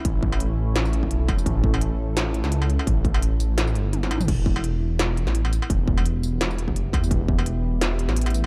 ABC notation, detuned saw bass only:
X:1
M:4/4
L:1/16
Q:"Swing 16ths" 1/4=170
K:Edor
V:1 name="Detuned saw bass" clef=bass
A,,,8 A,,,4 B,,,2 E,,,2 | A,,,8- A,,,3 C,,4 z | A,,,8 A,,,2 G,,,4 A,,,2 | E,,,8- E,,,3 A,,,4 z |
E,,,8 E,,,4 F,,,2 E,,2 | E,,,8- E,,,3 A,,,4 z |]